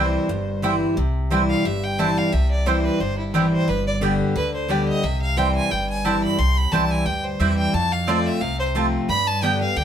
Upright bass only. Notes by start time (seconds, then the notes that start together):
Already playing: C2
0.29 G1
0.97 C2
1.65 G1
2.33 C2
3.00 G1
3.68 G1
4.36 D2
5.04 C2
5.71 G1
6.39 C2
6.72 C2
7.06 D2
7.40 E2
7.74 F2
8.42 C2
9.09 G2
9.76 D2